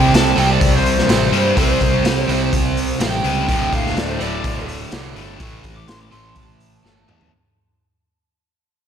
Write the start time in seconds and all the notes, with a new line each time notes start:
Already playing: C3 G3 C4 G5
0.13 C2 A5, snare, open hi-hat
0.36 C2 C3 G3 C4 G5, open hi-hat
0.50 D5
0.61 C2, kick, open hi-hat
0.76 C5
0.86 open hi-hat
0.98 snare
1.08 A1 C3 G3 C4, snare, open hi-hat
1.31 G2 C3 G3 C4, open hi-hat
1.56 C2 C3 G3 C4 C5, kick, open hi-hat
1.81 C2, kick, open hi-hat
2.03 C2, snare, open hi-hat
2.28 C2 C3 G3 C4, open hi-hat
2.53 C2, kick, open hi-hat
2.77 open hi-hat
2.99 A1 C3 G3 C4 G5, snare, open hi-hat
3.24 C#2 C3 G3 C4, open hi-hat
3.48 D1 D2 A2 D3, kick, open hi-hat
3.73 D1 F5, kick, open hi-hat
3.86 snare
3.96 D1 D5, snare, open hi-hat
4.09 C5
4.19 D1 D2 A2 D3 D5, open hi-hat
4.44 D1, kick, open hi-hat
4.69 open hi-hat
4.91 C2 D2 A2 D3, snare, open hi-hat
5.16 G1 D2 A2 D3, open hi-hat
5.38 A1 A2 E3 A3, kick, open hi-hat
5.64 A1, kick, open hi-hat
5.76 D6
5.88 A1 C6, snare, open hi-hat
6.00 D6
6.11 A1 A2 E3 A3 C6, open hi-hat
6.35 A1 A5, kick, open hi-hat
6.60 open hi-hat
6.83 G1 A2 E3 A3, snare
7.08 E2 A2 E3 A3, mid tom
7.21 floor tom